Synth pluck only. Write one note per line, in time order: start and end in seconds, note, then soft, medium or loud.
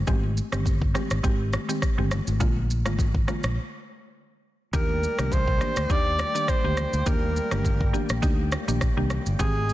0.07 0.23 D#3 medium
0.07 0.23 G#3 medium
0.07 0.23 C4 medium
0.07 0.23 G4 loud
0.52 0.65 D#3 medium
0.52 0.65 G#3 medium
0.52 0.65 C4 medium
0.52 0.66 G4 medium
0.94 1.10 D#3 medium
0.94 1.10 G#3 medium
0.94 1.11 C4 medium
0.94 1.11 G4 medium
1.23 1.65 D#3 loud
1.23 1.65 G#3 medium
1.23 1.65 C4 medium
1.23 1.65 G4 loud
1.68 1.82 D#3 medium
1.68 1.82 G#3 medium
1.68 1.82 C4 medium
1.68 1.82 G4 medium
1.98 2.11 D#3 medium
1.98 2.11 G#3 medium
1.98 2.11 C4 medium
1.98 2.11 G4 medium
2.40 2.56 D3 medium
2.40 2.56 G#3 medium
2.40 2.56 A#3 medium
2.40 2.56 F4 loud
2.85 2.98 D3 medium
2.85 2.99 G#3 medium
2.85 2.99 A#3 medium
2.85 2.99 F4 medium
3.27 3.44 D3 medium
3.27 3.44 G#3 medium
3.27 3.44 A#3 medium
3.27 3.44 F4 medium
4.73 4.89 D#3 medium
4.73 4.89 A#3 medium
4.73 4.89 D4 medium
4.73 4.89 G4 loud
5.18 5.31 D#3 medium
5.18 5.32 A#3 medium
5.18 5.32 D4 medium
5.18 5.32 G4 medium
5.61 5.77 D#3 medium
5.61 5.77 A#3 medium
5.61 5.77 D4 medium
5.61 5.77 G4 medium
5.89 6.31 D#3 medium
5.89 6.31 A#3 medium
5.89 6.31 D4 medium
5.89 6.31 G4 loud
6.34 6.48 D#3 medium
6.34 6.48 A#3 medium
6.34 6.48 D4 medium
6.34 6.48 G4 medium
6.64 6.77 D#3 medium
6.64 6.77 A#3 medium
6.64 6.77 D4 medium
6.64 6.77 G4 medium
7.06 7.22 D#3 medium
7.06 7.22 A#3 medium
7.06 7.22 D4 medium
7.06 7.23 G4 loud
7.51 7.64 D#3 medium
7.51 7.64 A#3 medium
7.51 7.65 D4 medium
7.51 7.65 G4 medium
7.93 8.09 D#3 medium
7.93 8.09 A#3 medium
7.93 8.10 D4 medium
7.93 8.10 G4 medium
8.22 8.64 A#3 medium
8.22 8.64 D4 medium
8.22 8.64 D#4 medium
8.22 8.64 G4 loud
8.68 8.81 D#3 medium
8.68 8.81 A#3 medium
8.68 8.81 D4 medium
8.68 8.81 G4 medium
8.97 9.10 D#3 medium
8.97 9.10 A#3 medium
8.97 9.10 D4 medium
8.97 9.10 G4 medium
9.39 9.55 D#3 loud
9.39 9.55 G#3 medium
9.39 9.55 C4 medium
9.39 9.55 G4 loud